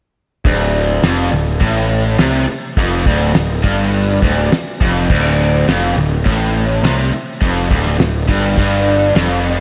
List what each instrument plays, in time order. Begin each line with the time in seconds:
0.45 picked electric bass D1, overdriven electric guitar D2, kick, open hi-hat
1.03 picked electric bass F1, overdriven electric guitar F2, snare, open hi-hat
1.32 picked electric bass D1, overdriven electric guitar D2
1.61 picked electric bass A1, overdriven electric guitar A2, kick, open hi-hat
2.18 picked electric bass C2, overdriven electric guitar C3, snare, open hi-hat
2.48 muted overdriven electric guitar stroke, muted picked electric bass stroke
2.77 picked electric bass F1, overdriven electric guitar F2, kick, open hi-hat
3.06 picked electric bass D1, overdriven electric guitar D2, kick
3.34 picked electric bass D1, overdriven electric guitar D2, snare, open hi-hat
3.63 picked electric bass G1, overdriven electric guitar G2, kick
3.93 open hi-hat
4.22 picked electric bass D1, overdriven electric guitar D2, kick
4.52 muted overdriven electric guitar stroke, muted picked electric bass stroke, snare, open hi-hat
4.81 picked electric bass F1, overdriven electric guitar F2, kick
5.10 picked electric bass D1, overdriven electric guitar D2, kick, crash
5.68 picked electric bass F1, overdriven electric guitar F2, snare, open hi-hat
5.96 picked electric bass D1, overdriven electric guitar D2
6.25 picked electric bass A1, overdriven electric guitar A2, kick, open hi-hat
6.83 picked electric bass C2, overdriven electric guitar C3, snare, open hi-hat
7.13 muted picked electric bass stroke, muted overdriven electric guitar stroke
7.42 picked electric bass F1, overdriven electric guitar F2, kick, open hi-hat
7.70 picked electric bass D1, overdriven electric guitar D2, kick
7.86 snare
7.99 picked electric bass D1, overdriven electric guitar D2, snare, open hi-hat
8.28 picked electric bass G1, overdriven electric guitar G2, kick
8.58 picked electric bass G1, overdriven electric guitar G2, kick, open hi-hat
9.15 picked electric bass F1, overdriven electric guitar F2, snare, open hi-hat